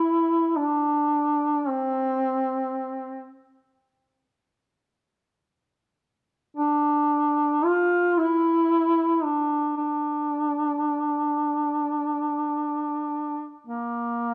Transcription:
0, 0, Header, 1, 2, 480
1, 0, Start_track
1, 0, Key_signature, -1, "minor"
1, 0, Tempo, 500000
1, 13767, End_track
2, 0, Start_track
2, 0, Title_t, "Duduk"
2, 0, Program_c, 0, 69
2, 0, Note_on_c, 0, 64, 95
2, 543, Note_on_c, 0, 62, 87
2, 558, Note_off_c, 0, 64, 0
2, 1612, Note_on_c, 0, 60, 91
2, 1626, Note_off_c, 0, 62, 0
2, 3194, Note_off_c, 0, 60, 0
2, 6305, Note_on_c, 0, 62, 98
2, 7340, Note_on_c, 0, 65, 105
2, 7354, Note_off_c, 0, 62, 0
2, 7847, Note_on_c, 0, 64, 109
2, 7861, Note_off_c, 0, 65, 0
2, 8867, Note_on_c, 0, 62, 88
2, 8882, Note_off_c, 0, 64, 0
2, 9375, Note_off_c, 0, 62, 0
2, 9381, Note_on_c, 0, 62, 80
2, 12960, Note_off_c, 0, 62, 0
2, 13123, Note_on_c, 0, 58, 74
2, 13767, Note_off_c, 0, 58, 0
2, 13767, End_track
0, 0, End_of_file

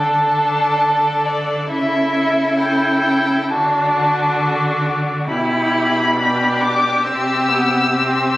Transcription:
0, 0, Header, 1, 5, 480
1, 0, Start_track
1, 0, Tempo, 902256
1, 900, Time_signature, 4, 2, 24, 8
1, 2816, Tempo, 881057
1, 4494, End_track
2, 0, Start_track
2, 0, Title_t, "Violin"
2, 0, Program_c, 0, 40
2, 0, Note_on_c, 0, 81, 127
2, 665, Note_on_c, 0, 74, 118
2, 673, Note_off_c, 0, 81, 0
2, 903, Note_off_c, 0, 74, 0
2, 910, Note_on_c, 0, 76, 127
2, 1372, Note_off_c, 0, 76, 0
2, 1379, Note_on_c, 0, 79, 126
2, 1861, Note_on_c, 0, 81, 111
2, 1869, Note_off_c, 0, 79, 0
2, 2579, Note_off_c, 0, 81, 0
2, 2811, Note_on_c, 0, 83, 127
2, 3531, Note_on_c, 0, 86, 125
2, 3539, Note_off_c, 0, 83, 0
2, 3763, Note_on_c, 0, 88, 127
2, 3771, Note_off_c, 0, 86, 0
2, 4494, Note_off_c, 0, 88, 0
2, 4494, End_track
3, 0, Start_track
3, 0, Title_t, "Violin"
3, 0, Program_c, 1, 40
3, 0, Note_on_c, 1, 69, 80
3, 880, Note_off_c, 1, 69, 0
3, 900, Note_on_c, 1, 69, 81
3, 1857, Note_on_c, 1, 66, 83
3, 1865, Note_off_c, 1, 69, 0
3, 2816, Note_off_c, 1, 66, 0
3, 2819, Note_on_c, 1, 67, 78
3, 3276, Note_off_c, 1, 67, 0
3, 3301, Note_on_c, 1, 67, 93
3, 4494, Note_off_c, 1, 67, 0
3, 4494, End_track
4, 0, Start_track
4, 0, Title_t, "Viola"
4, 0, Program_c, 2, 41
4, 0, Note_on_c, 2, 62, 90
4, 878, Note_off_c, 2, 62, 0
4, 899, Note_on_c, 2, 64, 90
4, 1852, Note_on_c, 2, 62, 98
4, 1860, Note_off_c, 2, 64, 0
4, 2807, Note_off_c, 2, 62, 0
4, 2810, Note_on_c, 2, 64, 90
4, 3288, Note_on_c, 2, 62, 91
4, 3296, Note_off_c, 2, 64, 0
4, 3770, Note_on_c, 2, 60, 93
4, 3779, Note_off_c, 2, 62, 0
4, 4011, Note_on_c, 2, 59, 90
4, 4019, Note_off_c, 2, 60, 0
4, 4258, Note_on_c, 2, 60, 96
4, 4266, Note_off_c, 2, 59, 0
4, 4494, Note_off_c, 2, 60, 0
4, 4494, End_track
5, 0, Start_track
5, 0, Title_t, "Cello"
5, 0, Program_c, 3, 42
5, 0, Note_on_c, 3, 50, 75
5, 879, Note_off_c, 3, 50, 0
5, 906, Note_on_c, 3, 49, 92
5, 1858, Note_on_c, 3, 50, 94
5, 1866, Note_off_c, 3, 49, 0
5, 2816, Note_off_c, 3, 50, 0
5, 2818, Note_on_c, 3, 47, 96
5, 3774, Note_on_c, 3, 48, 91
5, 3782, Note_off_c, 3, 47, 0
5, 4494, Note_off_c, 3, 48, 0
5, 4494, End_track
0, 0, End_of_file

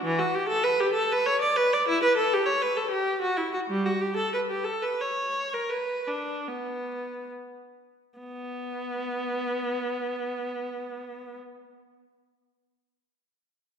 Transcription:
0, 0, Header, 1, 2, 480
1, 0, Start_track
1, 0, Key_signature, 2, "minor"
1, 0, Tempo, 612870
1, 27, Time_signature, 3, 2, 24, 8
1, 3387, Tempo, 684151
1, 4347, Tempo, 769231
1, 4827, Tempo, 818554
1, 5307, Tempo, 909091
1, 6747, Tempo, 924499
1, 8708, End_track
2, 0, Start_track
2, 0, Title_t, "Viola"
2, 0, Program_c, 0, 41
2, 29, Note_on_c, 0, 52, 94
2, 143, Note_off_c, 0, 52, 0
2, 149, Note_on_c, 0, 66, 84
2, 264, Note_off_c, 0, 66, 0
2, 272, Note_on_c, 0, 67, 90
2, 384, Note_on_c, 0, 69, 90
2, 385, Note_off_c, 0, 67, 0
2, 496, Note_on_c, 0, 71, 88
2, 498, Note_off_c, 0, 69, 0
2, 616, Note_off_c, 0, 71, 0
2, 628, Note_on_c, 0, 67, 84
2, 733, Note_on_c, 0, 69, 82
2, 742, Note_off_c, 0, 67, 0
2, 851, Note_off_c, 0, 69, 0
2, 877, Note_on_c, 0, 71, 86
2, 985, Note_off_c, 0, 71, 0
2, 987, Note_on_c, 0, 73, 95
2, 1100, Note_off_c, 0, 73, 0
2, 1110, Note_on_c, 0, 74, 86
2, 1219, Note_off_c, 0, 74, 0
2, 1224, Note_on_c, 0, 71, 94
2, 1340, Note_off_c, 0, 71, 0
2, 1357, Note_on_c, 0, 74, 85
2, 1469, Note_off_c, 0, 74, 0
2, 1477, Note_on_c, 0, 64, 100
2, 1587, Note_off_c, 0, 64, 0
2, 1594, Note_on_c, 0, 71, 89
2, 1703, Note_on_c, 0, 69, 94
2, 1704, Note_off_c, 0, 71, 0
2, 1817, Note_off_c, 0, 69, 0
2, 1829, Note_on_c, 0, 67, 81
2, 1924, Note_on_c, 0, 73, 84
2, 1941, Note_off_c, 0, 67, 0
2, 2047, Note_off_c, 0, 73, 0
2, 2053, Note_on_c, 0, 71, 86
2, 2168, Note_on_c, 0, 69, 77
2, 2171, Note_off_c, 0, 71, 0
2, 2278, Note_on_c, 0, 67, 78
2, 2288, Note_off_c, 0, 69, 0
2, 2518, Note_on_c, 0, 66, 78
2, 2519, Note_off_c, 0, 67, 0
2, 2638, Note_on_c, 0, 64, 76
2, 2643, Note_off_c, 0, 66, 0
2, 2766, Note_off_c, 0, 64, 0
2, 2769, Note_on_c, 0, 66, 74
2, 2818, Note_off_c, 0, 66, 0
2, 2900, Note_on_c, 0, 55, 85
2, 3016, Note_off_c, 0, 55, 0
2, 3020, Note_on_c, 0, 66, 68
2, 3140, Note_off_c, 0, 66, 0
2, 3141, Note_on_c, 0, 67, 77
2, 3263, Note_off_c, 0, 67, 0
2, 3264, Note_on_c, 0, 69, 69
2, 3384, Note_off_c, 0, 69, 0
2, 3397, Note_on_c, 0, 71, 69
2, 3440, Note_off_c, 0, 71, 0
2, 3510, Note_on_c, 0, 67, 68
2, 3612, Note_on_c, 0, 69, 73
2, 3617, Note_off_c, 0, 67, 0
2, 3730, Note_off_c, 0, 69, 0
2, 3737, Note_on_c, 0, 71, 68
2, 3852, Note_off_c, 0, 71, 0
2, 3865, Note_on_c, 0, 73, 64
2, 4226, Note_off_c, 0, 73, 0
2, 4237, Note_on_c, 0, 70, 55
2, 4348, Note_on_c, 0, 71, 60
2, 4355, Note_off_c, 0, 70, 0
2, 4584, Note_off_c, 0, 71, 0
2, 4585, Note_on_c, 0, 62, 54
2, 4827, Note_off_c, 0, 62, 0
2, 4838, Note_on_c, 0, 59, 48
2, 5312, Note_off_c, 0, 59, 0
2, 5786, Note_on_c, 0, 59, 59
2, 7450, Note_off_c, 0, 59, 0
2, 8708, End_track
0, 0, End_of_file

